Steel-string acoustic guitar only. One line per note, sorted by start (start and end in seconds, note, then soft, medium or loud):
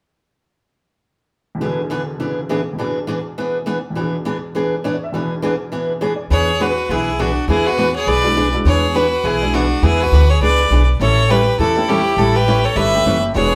1.61 1.80 E3 medium
1.61 1.80 B3 medium
1.61 1.81 D4 medium
1.61 1.81 G#4 medium
1.90 2.01 E3 medium
1.90 2.01 B3 medium
1.90 2.01 D4 medium
1.90 2.01 G#4 medium
2.20 2.39 E3 soft
2.20 2.39 B3 medium
2.20 2.39 D4 medium
2.20 2.39 G#4 medium
2.49 2.60 E3 medium
2.49 2.60 B3 medium
2.49 2.60 D4 medium
2.49 2.60 G#4 medium
2.79 2.98 E3 medium
2.79 2.98 B3 medium
2.79 2.98 D4 medium
2.79 2.98 G#4 medium
3.07 3.18 E3 medium
3.07 3.18 B3 medium
3.07 3.19 D4 medium
3.07 3.19 G#4 medium
3.38 3.57 E3 medium
3.38 3.57 B3 medium
3.38 3.57 D4 medium
3.38 3.57 G#4 medium
3.66 3.77 E3 medium
3.66 3.77 B3 medium
3.66 3.77 D4 medium
3.66 3.78 G#4 medium
3.95 4.15 E3 medium
3.95 4.15 B3 medium
3.95 4.15 D4 soft
3.95 4.16 G#4 medium
4.25 4.36 E3 medium
4.25 4.36 B3 medium
4.25 4.36 D4 medium
4.25 4.37 G#4 medium
4.55 4.74 E3 medium
4.55 4.74 B3 medium
4.55 4.75 D4 medium
4.55 4.75 G#4 medium
4.84 4.95 E3 medium
4.84 4.95 B3 medium
4.84 4.95 D4 medium
4.84 4.95 G#4 medium
5.14 5.33 E3 soft
5.14 5.33 B3 medium
5.14 5.34 D4 medium
5.14 5.34 G#4 medium
5.42 5.53 E3 medium
5.42 5.54 B3 medium
5.42 5.54 D4 medium
5.42 5.54 G#4 medium
5.72 5.91 E3 medium
5.72 5.92 B3 medium
5.72 5.92 D4 medium
5.72 5.92 G#4 medium
6.01 6.12 E3 medium
6.01 6.12 B3 medium
6.01 6.13 D4 medium
6.01 6.13 G#4 medium
6.30 6.50 E3 medium
6.30 6.50 B3 medium
6.30 6.50 D4 medium
6.30 6.51 G#4 medium
6.60 6.71 E3 medium
6.60 6.71 B3 medium
6.60 6.71 D4 medium
6.60 6.71 G#4 medium
6.90 7.09 E3 medium
6.90 7.09 B3 medium
6.90 7.09 D4 medium
6.90 7.10 G#4 medium
7.19 7.30 E3 medium
7.19 7.30 B3 medium
7.19 7.30 D4 medium
7.19 7.30 G#4 medium
7.49 7.68 E3 medium
7.49 7.68 B3 medium
7.49 7.68 D4 medium
7.49 7.69 G#4 medium
7.78 7.88 E3 medium
7.78 7.89 B3 medium
7.78 7.89 D4 medium
7.78 7.89 G#4 medium
8.07 8.26 E3 medium
8.07 8.27 B3 medium
8.07 8.27 D4 medium
8.07 8.27 G#4 medium
8.36 8.47 E3 medium
8.36 8.47 B3 medium
8.36 8.47 D4 medium
8.36 8.48 G#4 medium
8.66 8.85 E3 soft
8.66 8.85 B3 medium
8.66 8.85 D4 medium
8.66 8.86 G#4 medium
8.94 9.05 E3 medium
8.94 9.05 B3 medium
8.94 9.06 D4 medium
8.94 9.06 G#4 medium
9.24 9.43 E3 medium
9.24 9.44 B3 medium
9.24 9.44 D4 medium
9.24 9.44 G#4 medium
9.54 9.64 E3 medium
9.54 9.64 B3 medium
9.54 9.65 D4 medium
9.54 9.65 G#4 medium
9.83 10.02 E3 soft
9.83 10.02 B3 medium
9.83 10.03 D4 medium
9.83 10.03 G#4 medium
10.13 10.23 E3 medium
10.13 10.23 B3 medium
10.13 10.24 D4 medium
10.13 10.24 G#4 medium
10.42 10.61 E3 medium
10.42 10.61 B3 medium
10.42 10.61 D4 medium
10.42 10.62 G#4 medium
10.71 10.82 E3 medium
10.71 10.82 B3 medium
10.71 10.82 D4 medium
10.71 10.82 G#4 medium
11.01 11.20 E3 medium
11.01 11.20 G3 medium
11.01 11.20 C#4 medium
11.01 11.20 E4 medium
11.01 11.20 A4 medium
11.30 11.41 E3 medium
11.30 11.41 G3 medium
11.30 11.41 C#4 medium
11.30 11.41 E4 medium
11.30 11.41 A4 medium
11.59 11.78 E3 medium
11.59 11.79 G3 medium
11.59 11.79 C#4 medium
11.59 11.79 E4 medium
11.59 11.79 A4 medium
11.89 11.99 E3 medium
11.89 11.99 G3 medium
11.89 12.00 C#4 medium
11.89 12.00 E4 medium
11.89 12.00 A4 medium
12.18 12.37 E3 medium
12.18 12.37 G3 medium
12.18 12.37 C#4 medium
12.18 12.37 E4 medium
12.18 12.38 A4 medium
12.47 12.58 E3 medium
12.47 12.58 G3 medium
12.47 12.58 C#4 medium
12.47 12.58 E4 medium
12.47 12.58 A4 medium
12.76 12.96 E3 medium
12.76 12.96 G3 medium
12.76 12.96 C#4 medium
12.76 12.96 E4 medium
12.76 12.96 A4 medium
13.06 13.16 E3 medium
13.06 13.16 G3 medium
13.06 13.17 C#4 medium
13.06 13.17 E4 medium
13.06 13.17 A4 medium
13.36 13.55 E3 soft
13.36 13.55 B3 medium
13.36 13.55 D4 medium
13.36 13.55 G#4 medium